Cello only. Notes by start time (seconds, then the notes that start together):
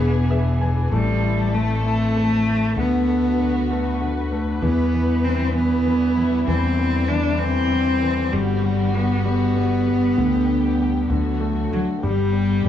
Already playing: B3
0.93 G3
1.54 A3
1.85 A3
2.78 B3
4.62 B3
5.24 C4
5.54 B3
6.47 C4
7.08 D4
7.39 C4
8.32 G3
8.94 B3
9.25 B3
11.73 F#3
12.04 G3